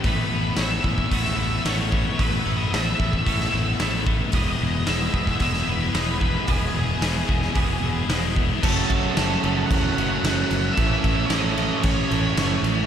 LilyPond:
<<
  \new Staff \with { instrumentName = "Lead electric guitar" } { \time 4/4 \key fis \minor \tempo 4 = 112 b'4 e''4 e''4 cis''4 | \tuplet 3/2 { b'4 dis''8 } e''2~ e''8 r8 | dis''4 e''4 e''8 b'4 b'8 | gis'2. r4 |
a'2 fis''2 | e''4 dis''4 cis''4. r8 | }
  \new Staff \with { instrumentName = "Overdriven electric guitar" } { \time 4/4 \key fis \minor <a b e' a'>8 <b e' a'>8 <a b e' a'>8 <b e' a'>8 <a b e' a'>8 <b e' a'>8 <a b e' a'>8 <b e' a'>8 | <a b e' a'>8 <b e' a'>8 <a b e' a'>8 <b e' a'>8 <a b e' a'>8 <b e' a'>8 <a b e' a'>8 <b e' a'>8 | <e gis b e' gis'>8 <b e' gis'>8 <gis b e' gis'>8 <b e' gis'>8 <e gis b e' gis'>8 <b e' gis'>8 <gis b e' gis'>8 <b e' gis'>8 | <e gis b e' gis'>8 <b e' gis'>8 <gis b e' gis'>8 <b e' gis'>8 <e gis b e' gis'>8 <b e' gis'>8 <gis b e' gis'>8 <b e' gis'>8 |
<fis a cis' fis'>1 | <a, e a cis' e'>1 | }
  \new Staff \with { instrumentName = "Overdriven electric guitar" } { \time 4/4 \key fis \minor <a, e a b e'>8 <a b e'>8 <e a b e'>8 <a b e'>8 <a, e a b e'>8 <a b e'>8 <e a b e'>8 <a b e'>8 | <a, e a b e'>8 <a b e'>8 <e a b e'>8 <a b e'>8 <a, e a b e'>8 <a b e'>8 <e a b e'>8 <a b e'>8 | <e, b, e gis b e'>8 <e gis b e'>8 <e gis b e'>8 <e gis b e'>8 <e, b, e gis b e'>8 <e gis b e'>8 <e gis b e'>8 <e gis b e'>8 | <e, b, e gis b e'>8 <e gis b e'>8 <e gis b e'>8 <e gis b e'>8 <e, b, e gis b e'>8 <e gis b e'>8 <e gis b e'>8 <e gis b e'>8 |
<fis, cis fis a cis' a'>8 <fis a cis' a'>8 <fis a cis' a'>8 <fis a cis' a'>4 <fis a cis' a'>8 <fis a cis' a'>4 | <a, e a cis' a'>8 <a cis' a'>8 <e a cis' a'>8 <a cis' a'>4 <a cis' a'>8 <e a cis' a'>4 | }
  \new Staff \with { instrumentName = "Overdriven electric guitar" } { \clef bass \time 4/4 \key fis \minor r1 | r1 | r1 | r1 |
<fis, cis fis>2~ <fis, cis fis>8 <fis, cis fis>8 <fis, cis fis>4 | <a, e a>2~ <a, e a>8 <a, e a>8 <a, e a>4 | }
  \new Staff \with { instrumentName = "Fingered electric bass" } { \clef bass \time 4/4 \key fis \minor a,,8 a,,8 a,,8 a,,8 a,,8 a,,8 a,,4 | a,,8 a,,8 a,,8 a,,8 a,,8 a,,8 a,,4 | e,,8 e,,8 e,,8 e,,8 e,,8 e,,8 e,,4 | e,,8 e,,8 e,,8 e,,8 e,,8 e,,8 e,,4 |
fis,,8 fis,,8 fis,,8 fis,,8 e,8 fis,,8 fis,,8 fis,,8 | a,,8 a,,8 a,,4 a,,8 a,,8 fis,,8 a,,8 | }
  \new DrumStaff \with { instrumentName = "Drums" } \drummode { \time 4/4 <hho bd>4 <hho sn>8 bd16 bd16 <hho bd>16 sn8. <hho sn>8 bd8 | <hho bd>4 <hho sn>8 bd16 bd16 <hho bd>16 sn8. <hho sn>8 bd8 | <hho bd>4 <hho sn>8 bd16 <bd sn>16 <hho bd>16 sn8. <hho sn>8 bd8 | <hho bd>4 <hho sn>8 bd16 sn16 <hho bd>4 <hho sn>8 bd8 |
<cymc bd>8 <cymc bd>8 <cymc sn>8 cymc8 <cymc bd>8 cymc8 <cymc sn>8 cymc8 | <cymc bd>8 <cymc bd>8 <cymc sn>8 cymc8 <cymc bd>8 cymc8 <cymc sn>8 cymc8 | }
>>